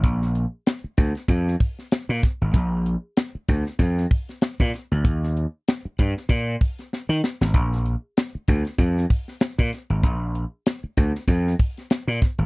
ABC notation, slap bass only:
X:1
M:4/4
L:1/16
Q:"Swing 16ths" 1/4=96
K:Bbmix
V:1 name="Slap bass" clef=bass
B,,,3 z3 D,, z F,,2 z3 B,, z A,,, | B,,,3 z3 D,, z F,,2 z3 B,, z D,, | E,,3 z3 G,, z B,,2 z3 E, z A,,, | B,,,3 z3 D,, z F,,2 z3 B,, z A,,, |
B,,,3 z3 D,, z F,,2 z3 B,, z A,,, |]